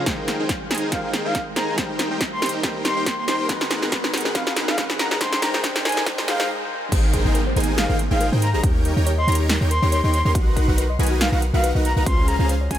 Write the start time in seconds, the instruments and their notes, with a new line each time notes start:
Already playing: riser
0.04 grand piano G#3 G4 A#4 C5, supersaw synth D#4 G#4 A#4 C5 G5, kick, snare, closed hi-hat
0.28 snare, closed hi-hat
0.39 808-style bass G#1, supersaw synth D#4 G#4 A#4 C5 G5
0.49 kick, snare, closed hi-hat
0.70 grand piano G#3 G4 A#4 C5, supersaw synth D#4 G#4 A#4 C5 G#5, snare, closed hi-hat
0.75 closed hi-hat
0.78 closed hi-hat
0.90 grand piano G#3 G4 A#4 C5, supersaw synth D#4 G#4 A#4 C5 G5, soft synth lead F5, kick, snare, closed hi-hat
1.04 soft synth lead F5
1.13 snare, closed hi-hat
1.25 808-style bass G#2, supersaw synth D#4 G#4 A#4 C5 G5, soft synth lead F5
1.35 kick, snare, closed hi-hat
1.55 808-style bass G#2, grand piano G#3 G4 A#4 C5, supersaw synth D#4 G#4 A#4 C5 G#5, soft synth lead A#5, snare, closed hi-hat
1.68 soft synth lead A#5
1.76 808-style bass D#2, grand piano G3 G4 A#4, supersaw synth D#4 G4 A#4 C5 G5, kick, snare, closed hi-hat
1.80 grand piano C5
1.99 snare, closed hi-hat
2.11 808-style bass D#2, supersaw synth D#4 G4 A#4 C5 G5
2.21 kick, snare, closed hi-hat
2.33 soft synth lead C6
2.41 808-style bass D#2, grand piano G3 G4 A#4 C5, supersaw synth D#4 G4 A#4 C5 G5, snare, closed hi-hat
2.46 closed hi-hat
2.49 closed hi-hat
2.62 808-style bass D#2, grand piano G3 G4 A#4, supersaw synth D#4 G4 A#4 C5 G5, kick, snare, closed hi-hat
2.66 grand piano C5
2.85 soft synth lead C6, snare, closed hi-hat
2.97 808-style bass D#2, supersaw synth D#4 G4 A#4 C5 G5
3.06 soft synth lead C6, kick, snare, closed hi-hat
3.18 soft synth lead C6
3.27 808-style bass D#2, grand piano G3 G4 A#4 C5, supersaw synth D#4 G4 A#4 C5 G5, soft synth lead C6, snare, closed hi-hat
3.40 soft synth lead C6
3.48 grand piano G#3 F#4 A#4, supersaw synth D#4 G#4 B4 F#5, kick, snare, closed hi-hat
3.52 grand piano B4
3.61 snare
3.71 snare, closed hi-hat
3.82 supersaw synth D#4 G#4 A#4 B4 F#5, snare
3.90 grand piano G#3 F#4 A#4, kick, snare, closed hi-hat
3.94 grand piano B4
4.04 snare
4.14 snare, closed hi-hat
4.17 closed hi-hat
4.21 closed hi-hat
4.25 supersaw synth D#4 G#4 A#4 B4 F#5, snare
4.33 grand piano G#3 F#4 A#4 B4, supersaw synth D#4, soft synth lead F5, kick, snare, closed hi-hat
4.47 soft synth lead F5, snare
4.56 snare, closed hi-hat
4.68 supersaw synth D#4 G#4 A#4 B4 F#5, soft synth lead F5, snare
4.76 grand piano G#3 F#4 A#4 B4, supersaw synth D#4 G#4 A#4 B4 F#5, kick, snare, closed hi-hat
4.90 snare
4.99 soft synth lead A#5, snare, closed hi-hat
5.11 supersaw synth D#4 G#4 A#4 B4 F#5, soft synth lead A#5, snare
5.19 grand piano G#3 G4 A#4, supersaw synth D#4, soft synth lead C6, kick, snare, closed hi-hat
5.23 grand piano C5
5.32 snare
5.40 808-style bass C#2, grand piano G#3 G4 A#4, supersaw synth D#4 G#4 A#4 C5 G5, soft synth lead A#5, snare, closed hi-hat
5.44 grand piano C5
5.54 soft synth lead A#5, snare
5.62 grand piano G#3 G4 A#4 C5, supersaw synth D#4 G#4 A#4 C5 G5, kick, snare, closed hi-hat
5.76 snare
5.83 grand piano G#3 G4 A#4 C5, supersaw synth D#4 G#4 A#4 C5 G5, soft synth lead G#5, snare, closed hi-hat
5.89 closed hi-hat
5.92 closed hi-hat
5.97 snare
6.04 grand piano G#3 G4 A#4 C5, supersaw synth G5, kick, snare, closed hi-hat, swell
6.18 snare
6.26 grand piano G#3 G4 A#4, supersaw synth D#4 G#4 A#4 C5 G5, soft synth lead F5, snare, closed hi-hat
6.30 grand piano C5
6.40 snare
6.92 808-style bass G#1, supersaw synth D#4 G#4 A#4 C5 G5, synth arpeggio sound G4, kick, closed hi-hat, crash, downlifter
7.13 synth arpeggio sound G#4, kick, closed hi-hat
7.25 808-style bass G#1, supersaw synth D#4 G#4 A#4 C5 G5
7.35 synth arpeggio sound A#4, closed hi-hat
7.47 synth arpeggio sound C5
7.56 808-style bass G#1, supersaw synth D#4 G#4 A#4 C5 G#5, closed hi-hat
7.60 closed hi-hat
7.64 closed hi-hat
7.68 synth arpeggio sound G4
7.78 synth arpeggio sound G4, soft synth lead F5, snare, closed hi-hat
7.89 808-style bass G#1, supersaw synth D#4 G#4 A#4 C5 G5, soft synth lead F5
7.99 synth arpeggio sound G#4, closed hi-hat
8.11 808-style bass G#1, supersaw synth D#4 G#4 A#4 C5 G5, soft synth lead F5
8.21 synth arpeggio sound A#4, closed hi-hat
8.32 808-style bass G#2, supersaw synth D#4 G#4 A#4 C5 G5, synth arpeggio sound C5
8.42 soft synth lead A#5, closed hi-hat
8.54 808-style bass G#1, supersaw synth D#4 G#4 A#4 C5 A#5, synth arpeggio sound G4, soft synth lead A#5
8.63 808-style bass D#2, supersaw synth D#4 G4 A#4 C#5 G5, synth arpeggio sound G4, kick, closed hi-hat
8.85 synth arpeggio sound A#4, closed hi-hat
8.97 808-style bass D#2, supersaw synth D#4 G4 A#4 C#5 G5
9.06 synth arpeggio sound C#5, closed hi-hat
9.18 synth arpeggio sound D#5, soft synth lead C6
9.28 808-style bass D#2, supersaw synth D#4 G4 A#4 C#5 A#5, closed hi-hat
9.32 closed hi-hat
9.35 closed hi-hat
9.39 synth arpeggio sound G4
9.49 synth arpeggio sound G4, snare, closed hi-hat
9.61 808-style bass D#2, supersaw synth D#4 G4 A#4 C#5 G5
9.71 synth arpeggio sound A#4, soft synth lead C6, closed hi-hat
9.82 808-style bass D#2, supersaw synth D#4 G4 A#4 C#5 G5
9.92 synth arpeggio sound C#5, soft synth lead C6, closed hi-hat
10.04 808-style bass D#2, supersaw synth D#4 G4 A#4 C#5 G5, synth arpeggio sound D#5, soft synth lead C6
10.14 soft synth lead C6, closed hi-hat
10.25 808-style bass D#2, supersaw synth D#4 G4 A#4 C#5 C6, synth arpeggio sound G4, soft synth lead C6
10.35 808-style bass B1, supersaw synth D#4 F#4 A#4 B4 F#5, synth arpeggio sound F#4, kick, closed hi-hat
10.56 synth arpeggio sound A#4, kick, closed hi-hat
10.68 808-style bass B1, supersaw synth D#4 F#4 A#4 B4 F#5
10.78 synth arpeggio sound B4, closed hi-hat
10.90 synth arpeggio sound D#5
10.99 808-style bass B1, supersaw synth D#4 F#4 A#4 B4 G#5, closed hi-hat
11.03 closed hi-hat
11.07 closed hi-hat
11.11 synth arpeggio sound F#4
11.21 synth arpeggio sound F#4, soft synth lead F5, snare, closed hi-hat
11.32 808-style bass B1, supersaw synth D#4 F#4 A#4 B4 F#5, soft synth lead F5
11.42 synth arpeggio sound A#4, closed hi-hat
11.54 808-style bass B1, supersaw synth D#4 F#4 A#4 B4 F#5, soft synth lead F5
11.64 synth arpeggio sound B4, closed hi-hat
11.75 808-style bass B1, supersaw synth D#4 F#4 A#4 B4 F#5, synth arpeggio sound D#5
11.85 soft synth lead A#5, closed hi-hat
11.97 808-style bass B1, supersaw synth D#4 F#4 A#4 B4 A#5, synth arpeggio sound F#4, soft synth lead A#5
12.06 808-style bass C#2, supersaw synth C#4 F4 G#4 C5 F5, synth arpeggio sound F4, soft synth lead C6, kick, closed hi-hat
12.28 synth arpeggio sound G#4, soft synth lead A#5, closed hi-hat
12.39 808-style bass C#2, supersaw synth C#4 F4 G#4 C5 F5, soft synth lead A#5
12.49 synth arpeggio sound C5, closed hi-hat
12.61 synth arpeggio sound C#5
12.70 808-style bass C#2, supersaw synth C#4 F4 G#4 C5 G#5, soft synth lead G#5, kick, closed hi-hat
12.75 closed hi-hat